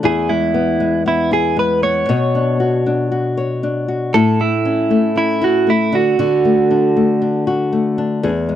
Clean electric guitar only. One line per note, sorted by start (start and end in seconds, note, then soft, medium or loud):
0.05 0.31 G#4 medium
0.29 1.02 E4 medium
1.08 1.33 E4 medium
1.33 1.59 G#4 medium
1.59 1.83 B4 loud
1.83 3.33 C#5 medium
4.14 4.40 A4 medium
4.41 5.16 E4 medium
5.18 5.43 E4 medium
5.44 5.69 F#4 medium
5.70 5.95 E4 medium
5.95 7.44 F#4 medium